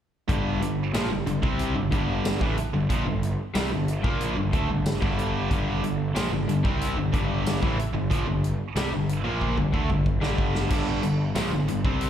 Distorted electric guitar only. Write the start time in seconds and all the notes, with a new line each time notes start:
0.28 G2 D3 G3
0.61 G2 D3
0.95 A#2 F3
1.10 G2 D3
1.26 G2 D3
1.42 C3 G3 C4
1.75 G2 D3
1.92 G2 D3 G3
2.41 A2 E3
2.58 muted distorted electric guitar stroke
2.73 G2 D3
2.89 A#2 F3
3.06 G2 D3
3.55 C3 G3
3.72 G2 D3
4.04 A#2 F3 A#3
4.37 G2 D3
4.54 D3 A3
4.70 G2 D3
5.02 G2 D3 G3
5.51 G2 D3 G3
5.84 G2 D3
6.15 A#2 F3
6.32 G2 D3
6.49 G2 D3
6.65 C3 G3 C4
6.97 G2 D3
7.12 G2 D3 G3
7.61 A2 E3
7.77 muted distorted electric guitar stroke
7.93 G2 D3
8.10 A#2 F3
8.27 G2 D3
8.76 C3 G3
8.91 G2 D3
9.24 A#2 F3 A#3
9.57 G2 D3
9.74 D3 A3
9.89 G2 D3
10.22 G2 D3 G3
10.71 G2 D3 G3
11.03 G2 D3
11.35 A#2 F3
11.52 G2 D3
11.68 G2 D3
11.85 C3 G3 C4